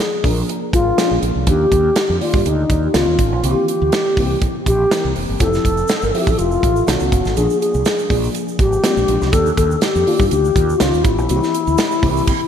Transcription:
Already playing: fm electric piano F3 A#3 D4 G#4, alto flute G#4
0.23 fretless electric bass A#1, fm electric piano F3 A#3 D4 A#4, kick, open hi-hat
0.49 closed hi-hat
0.73 fretless electric bass G#1, alto flute F4, kick, closed hi-hat
0.98 fm electric piano F3 A#3 C#4 G#4, snare, closed hi-hat
1.05 fm electric piano D4
1.11 fretless electric bass A#1
1.22 fretless electric bass A#1, closed hi-hat
1.36 fretless electric bass C2
1.47 fretless electric bass D#2, fm electric piano D#3 A#3 D4 G4, alto flute G4, kick, closed hi-hat
1.72 fretless electric bass D#2, kick, closed hi-hat
1.96 snare, closed hi-hat
2.09 fretless electric bass F2
2.20 fm electric piano D#3 A#3 G4 D5, alto flute F4, open hi-hat
2.34 fretless electric bass G2, kick
2.45 fretless electric bass D2, alto flute D#4, closed hi-hat
2.70 fretless electric bass D#2, kick, closed hi-hat
2.94 fretless electric bass C#2, fm electric piano D#3 B3 C#4 F4, alto flute F4, snare, closed hi-hat
3.07 fretless electric bass D#2
3.19 fretless electric bass G#1, kick, closed hi-hat
3.32 fretless electric bass A#1
3.43 fretless electric bass C2, fm electric piano D3 A#3 C4 G4, alto flute G4, closed hi-hat
3.50 fm electric piano E3
3.68 alto flute G4, closed hi-hat
3.82 fretless electric bass D2
3.92 snare, closed hi-hat
4.17 fretless electric bass C2, fm electric piano E3 A#3 C4 G4, kick, open hi-hat
4.42 kick, closed hi-hat
4.66 fretless electric bass A#1, alto flute G4, kick, closed hi-hat
4.91 fm electric piano E3 A#3 C4 A#4, snare, closed hi-hat
5.05 fretless electric bass C2
5.16 fretless electric bass F1, open hi-hat
5.29 fretless electric bass G1
5.40 fretless electric bass F1, fm electric piano F3 C4 E4 A4, alto flute A4, kick, closed hi-hat, shaker
5.53 snare, shaker
5.65 fretless electric bass F1, kick, closed hi-hat, shaker
5.77 shaker
5.88 snare, closed hi-hat, shaker
6.02 fretless electric bass G1, alto flute A#4, shaker
6.12 fm electric piano F3 C4 G4 E5, alto flute A4, open hi-hat
6.22 alto flute G4
6.27 fretless electric bass A1, alto flute A4, kick, shaker
6.38 fretless electric bass F1, alto flute F4, closed hi-hat, shaker
6.51 shaker
6.63 fretless electric bass A1, kick, closed hi-hat
6.76 shaker
6.86 fretless electric bass B1, fm electric piano D#3 B3 C#4 A4, alto flute F#4, snare, closed hi-hat, shaker
7.00 fretless electric bass C#2, shaker
7.12 fretless electric bass F#1, kick, closed hi-hat
7.25 fretless electric bass G#1, snare, shaker
7.36 fretless electric bass A#1, fm electric piano F3 A#3 D4 G#4, alto flute G#4, closed hi-hat, shaker
7.50 shaker
7.61 alto flute G#4, closed hi-hat, shaker
7.74 fretless electric bass C2, shaker
7.85 snare, closed hi-hat, shaker
7.99 shaker
8.10 fretless electric bass A#1, fm electric piano F3 A#3 D4 G#4, kick, open hi-hat
8.24 shaker
8.35 closed hi-hat, shaker
8.48 shaker
8.59 fretless electric bass G#1, alto flute G4, kick, closed hi-hat
8.73 shaker
8.84 fm electric piano F3 G#3 A#3 C4, snare, closed hi-hat, shaker
8.90 fm electric piano D4
8.97 fretless electric bass A#1, shaker
9.08 fretless electric bass A#1, closed hi-hat
9.22 fretless electric bass C2, snare, shaker
9.32 fretless electric bass D#2, fm electric piano D#3 A#3 D4 G4, alto flute A4, kick, closed hi-hat, shaker
9.46 shaker
9.56 fretless electric bass D#2, alto flute A4, kick, closed hi-hat, shaker
9.71 shaker
9.81 alto flute G4, snare, closed hi-hat, shaker
9.95 fretless electric bass F2, shaker
10.06 fm electric piano D#3 A#3 D4 F4, open hi-hat
10.20 fretless electric bass G2, kick, shaker
10.29 fretless electric bass D2, alto flute G4, closed hi-hat, shaker
10.45 shaker
10.56 fretless electric bass D#2, kick, closed hi-hat
10.69 shaker
10.79 fretless electric bass C#2, fm electric piano D#3 B3 C#4 F4, alto flute F4, snare, closed hi-hat, shaker
10.94 fretless electric bass D#2, shaker
11.03 fretless electric bass G#1, alto flute E4, kick, closed hi-hat
11.18 fretless electric bass A#1, shaker
11.29 fretless electric bass C2, fm electric piano E3 A#3 C4 F#4, closed hi-hat, shaker
11.36 fm electric piano G4
11.43 snare, shaker
11.54 closed hi-hat, shaker
11.67 fretless electric bass D2, shaker
11.78 snare, closed hi-hat, shaker
11.91 shaker
12.02 fretless electric bass C2, fm electric piano E3 A#3 C4 G4, kick, open hi-hat
12.17 shaker
12.27 kick, crash

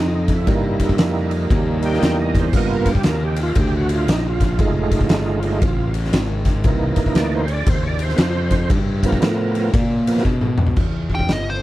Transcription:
Already playing: fingered electric bass F2
0.00 tonewheel organ D#4
0.15 tonewheel organ D#4
0.28 tonewheel organ D#4, kick, ride
0.34 tonewheel organ E4
0.47 fingered electric bass G2, tonewheel organ G3 A#3 D#4, kick, ride
0.80 kick, ride
0.89 kick
0.98 fingered electric bass F2, snare, ride
1.31 ride
1.50 fingered electric bass D#2, kick, ride
1.83 tonewheel organ G5, ride
1.94 snare
2.02 fingered electric bass E2, snare, ride
2.22 tonewheel organ D#5
2.35 kick, snare, ride
2.40 tonewheel organ C5
2.53 fingered electric bass G2, tonewheel organ A#3 B3 F4, kick, crash
2.57 tonewheel organ D#5
2.75 tonewheel organ A#4
2.86 kick, ride
2.91 tonewheel organ G4
2.95 kick
3.03 fingered electric bass D#2, snare, ride
3.09 tonewheel organ A#4
3.25 tonewheel organ G4
3.36 ride
3.43 tonewheel organ F4
3.55 fingered electric bass D2, kick, ride
3.59 tonewheel organ G4
3.76 tonewheel organ F#4
3.89 ride
3.95 tonewheel organ F4
4.08 fingered electric bass A#1, snare, ride
4.12 tonewheel organ D#4
4.29 tonewheel organ F4
4.40 kick, snare, ride
4.45 tonewheel organ F4
4.59 fingered electric bass F1, tonewheel organ G#3 A3 D#4, kick, ride
4.92 kick, ride
5.01 kick
5.09 fingered electric bass G1, snare, ride
5.43 tonewheel organ G#3 A3 D#4, ride
5.62 fingered electric bass A1, kick, ride
5.94 ride
6.05 snare
6.12 fingered electric bass G#1, snare, ride
6.45 kick, snare, ride
6.64 fingered electric bass C2, tonewheel organ E3 A#3 D#4, kick, ride
6.96 muted fingered electric bass stroke, kick, ride
7.06 kick
7.15 fingered electric bass D2, tonewheel organ D5, snare, ride
7.35 tonewheel organ C5
7.48 tonewheel organ C#5, ride
7.53 tonewheel organ D5
7.66 fingered electric bass D#2, tonewheel organ C5, kick, ride
7.83 tonewheel organ C#5
7.87 tonewheel organ D5
7.99 tonewheel organ C5, ride
8.09 snare
8.16 fingered electric bass F2, tonewheel organ B4, snare, ride
8.21 tonewheel organ C5
8.51 kick, ride
8.70 fingered electric bass G2, kick, ride
9.03 tonewheel organ F3 B3 A#4, kick, ride
9.12 kick
9.22 fingered electric bass A2, snare, ride
9.55 ride
9.73 fingered electric bass A#2, kick, ride
10.07 tonewheel organ F3 A#3 B3, ride
10.17 snare
10.25 fingered electric bass B2, kick
10.41 mid tom
10.58 mid tom
10.67 floor tom
10.76 fingered electric bass E2, kick, crash
11.10 kick
11.15 lead electric guitar G5
11.19 kick
11.28 fingered electric bass G1, snare, open hi-hat
11.33 lead electric guitar D#5
11.50 lead electric guitar C5

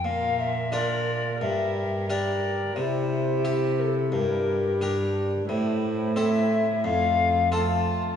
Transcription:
0.04 cello A#2, harpsichord A#2, trombone F4, viola A#4, recorder F5
0.39 recorder E5
0.72 harpsichord D4 F4 A#4, trombone F4, viola A#4, recorder D5
1.41 cello G2, harpsichord G2, trombone G4, viola A#4, recorder E5
2.09 harpsichord D4 G4 A#4, trombone G4, viola A#4, recorder D5
2.76 harpsichord C3, cello C3, trombone E4, viola G4, recorder C5
3.45 harpsichord E4 G4
3.80 recorder A#4
3.84 recorder A4
4.12 harpsichord G2, cello G2, trombone D4, viola G4, recorder A#4
4.81 harpsichord D4 G4 A#4
5.49 cello A2, harpsichord A2, trombone A3, viola E4, recorder C5
6.16 trombone A3, harpsichord C4 E4 A4, viola E4, recorder E5
6.84 cello F2, harpsichord F2, trombone A3, viola F4, recorder F5
7.52 trombone A3, harpsichord C4 F4 A4, viola F4, recorder A5

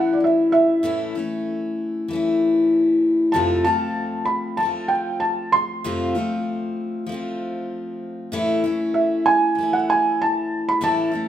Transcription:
Already playing: steel-string acoustic guitar E3 A3 C#4 E4, felt piano F#5
0.13 felt piano D5
0.24 felt piano E5
0.52 felt piano E5
0.83 steel-string acoustic guitar A2 E3 A3 C#4 E4
1.15 steel-string acoustic guitar A3 C#4 E4
2.08 steel-string acoustic guitar E3 A3
2.13 steel-string acoustic guitar C#4 E4
3.32 steel-string acoustic guitar F2 C3 F3 A3 C4 F4, felt piano A5
3.64 steel-string acoustic guitar F3 A3 C4 F4, felt piano A5
4.25 felt piano B5
4.57 steel-string acoustic guitar F3 A3, felt piano A5
4.63 steel-string acoustic guitar C4 F4
4.88 felt piano G5
5.20 felt piano A5
5.52 felt piano C6
5.84 steel-string acoustic guitar F2 C3 F3 A3 C4 F4
6.15 steel-string acoustic guitar F3 A3 C4 F4
7.06 steel-string acoustic guitar F3 A3
7.12 steel-string acoustic guitar C4 F4
8.32 steel-string acoustic guitar A2 E3 A3 C#4 E4
8.64 steel-string acoustic guitar A3 C#4 E4
8.94 felt piano E5
9.26 felt piano G#5
9.55 steel-string acoustic guitar E3 A3
9.61 steel-string acoustic guitar C#4 E4
9.73 felt piano F#5
9.90 felt piano G#5
10.22 felt piano A5
10.69 felt piano B5
10.81 steel-string acoustic guitar A2 E3 A3 C#4 E4, felt piano A5
11.12 steel-string acoustic guitar A3 C#4 E4

